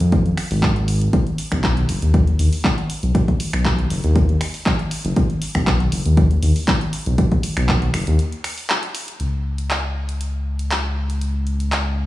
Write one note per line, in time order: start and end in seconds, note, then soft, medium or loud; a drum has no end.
0.00 0.33 F2 medium
0.00 closed hi-hat soft
0.12 kick loud
0.12 closed hi-hat medium
0.26 closed hi-hat soft
0.37 finger snap medium
0.37 open hi-hat loud
0.51 1.09 G#1 loud
0.51 open hi-hat medium
0.63 kick loud
0.63 clap loud
0.63 closed hi-hat medium
0.76 closed hi-hat soft
0.88 open hi-hat loud
1.01 closed hi-hat soft
1.13 kick loud
1.13 closed hi-hat medium
1.27 closed hi-hat soft
1.38 open hi-hat loud
1.52 1.84 B1 loud
1.52 finger snap medium
1.52 kick medium
1.52 closed hi-hat soft
1.64 kick loud
1.64 clap loud
1.64 closed hi-hat medium
1.77 closed hi-hat soft
1.89 1.99 F#1 medium
1.89 open hi-hat loud
2.02 2.35 D#2 medium
2.02 closed hi-hat soft
2.14 kick loud
2.14 closed hi-hat medium
2.27 closed hi-hat soft
2.39 2.49 D#2 medium
2.39 open hi-hat loud
2.53 open hi-hat medium
2.64 kick loud
2.64 clap loud
2.78 closed hi-hat soft
2.90 open hi-hat loud
3.03 3.12 B1 loud
3.03 closed hi-hat soft
3.15 kick loud
3.15 closed hi-hat medium
3.28 kick medium
3.28 closed hi-hat soft
3.40 open hi-hat medium
3.53 3.86 B1 loud
3.53 finger snap medium
3.53 closed hi-hat soft
3.65 kick loud
3.65 clap loud
3.65 closed hi-hat medium
3.79 closed hi-hat soft
3.90 4.01 F#1 medium
3.90 open hi-hat loud
4.04 4.36 D#2 medium
4.04 closed hi-hat medium
4.16 kick loud
4.16 closed hi-hat medium
4.29 closed hi-hat soft
4.41 finger snap medium
4.41 open hi-hat medium
4.54 open hi-hat medium
4.66 kick loud
4.66 clap loud
4.66 closed hi-hat medium
4.79 closed hi-hat soft
4.91 open hi-hat loud
5.05 5.14 F#1 medium
5.05 closed hi-hat medium
5.16 kick loud
5.16 closed hi-hat medium
5.30 closed hi-hat soft
5.42 open hi-hat loud
5.55 5.88 B1 loud
5.55 finger snap medium
5.55 kick medium
5.55 closed hi-hat medium
5.67 kick loud
5.67 clap loud
5.67 closed hi-hat medium
5.80 closed hi-hat soft
5.92 6.02 F#1 medium
5.92 open hi-hat loud
6.06 6.38 D#2 medium
6.06 closed hi-hat medium
6.17 kick loud
6.17 closed hi-hat medium
6.31 closed hi-hat soft
6.43 6.53 D#2 medium
6.43 open hi-hat loud
6.56 open hi-hat medium
6.68 kick loud
6.68 clap loud
6.68 closed hi-hat medium
6.81 closed hi-hat soft
6.93 open hi-hat medium
7.06 7.15 B1 loud
7.06 closed hi-hat medium
7.18 kick loud
7.18 closed hi-hat medium
7.32 kick medium
7.32 closed hi-hat soft
7.43 open hi-hat loud
7.57 7.89 B1 loud
7.57 finger snap medium
7.57 closed hi-hat medium
7.69 kick loud
7.69 clap loud
7.69 closed hi-hat medium
7.82 closed hi-hat soft
7.94 8.04 F#1 medium
7.94 finger snap medium
7.94 open hi-hat loud
8.07 8.19 D#2 medium
8.07 closed hi-hat medium
8.19 closed hi-hat medium
8.32 closed hi-hat soft
8.44 finger snap medium
8.44 open hi-hat loud
8.58 open hi-hat medium
8.69 clap loud
8.69 closed hi-hat medium
8.83 closed hi-hat soft
8.95 open hi-hat loud
9.08 closed hi-hat medium
9.20 12.06 C#2 medium
9.20 closed hi-hat medium
9.58 closed hi-hat soft
9.70 clap loud
9.70 closed hi-hat medium
10.09 closed hi-hat medium
10.21 closed hi-hat medium
10.59 closed hi-hat medium
10.71 clap loud
10.71 closed hi-hat medium
11.10 closed hi-hat soft
11.21 closed hi-hat medium
11.47 closed hi-hat soft
11.60 closed hi-hat soft
11.72 clap loud
11.72 closed hi-hat medium